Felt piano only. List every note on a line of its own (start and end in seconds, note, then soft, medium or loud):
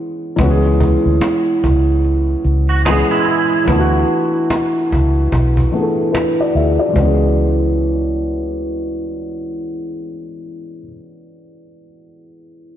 0.00 0.35 E3 medium
0.00 0.33 G#3 medium
0.00 0.35 B3 medium
0.00 0.36 C#4 medium
0.00 0.36 G#4 medium
0.36 2.80 E3 medium
0.36 2.81 G#3 medium
0.40 2.82 B3 medium
0.40 2.83 C#4 medium
0.40 0.49 F#4 medium
0.51 2.87 G#4 medium
2.87 3.63 E3 medium
2.87 3.69 G#3 medium
2.87 3.67 B3 medium
2.87 3.70 C#4 soft
2.87 3.70 G#4 medium
3.65 5.67 E3 medium
3.65 5.68 A3 medium
3.69 5.69 B3 medium
3.69 5.70 D4 medium
3.69 3.78 E4 medium
3.79 5.75 F#4 medium
5.72 6.87 E3 medium
5.72 6.96 A3 soft
5.72 6.95 B3 soft
5.72 6.12 D4 soft
5.72 5.82 G#4 soft
5.82 6.18 A4 medium
6.13 6.37 D4 soft
6.13 6.37 B4 medium
6.41 6.55 F#4 soft
6.41 6.55 D5 medium
6.56 6.79 G#4 soft
6.56 6.79 E5 medium
6.79 7.19 F#4 soft
6.79 7.19 D5 medium
6.88 10.80 E3 medium
6.88 10.84 G#3 medium
6.96 10.88 B3 medium
6.96 10.91 C#4 medium
7.04 10.95 G#4 medium